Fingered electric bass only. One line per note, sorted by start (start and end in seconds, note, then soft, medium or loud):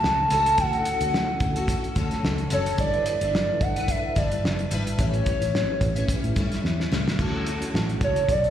0.03 0.25 C#2 loud
0.30 0.53 C#2 medium
0.58 0.80 D2 loud
1.01 1.23 D2 loud
1.41 1.75 D2 loud
1.96 2.18 D2 medium
2.23 2.45 C#2 loud
2.51 2.73 F#1 medium
2.78 3.01 G1 loud
3.21 3.43 G1 loud
3.61 3.95 G1 medium
4.17 4.38 G1 loud
4.44 4.66 F#1 medium
4.71 4.93 G#1 medium
4.99 5.21 A1 loud
5.41 5.63 A1 loud
5.81 6.03 A1 medium
6.24 6.34 A2 loud
6.36 6.49 G2 medium
6.52 6.61 G2 medium
6.64 6.86 E2 medium
6.92 7.04 C#2 loud
7.19 7.63 D2 loud
7.74 7.96 A1 medium
8.01 8.23 C#2 medium
8.29 8.50 B1 medium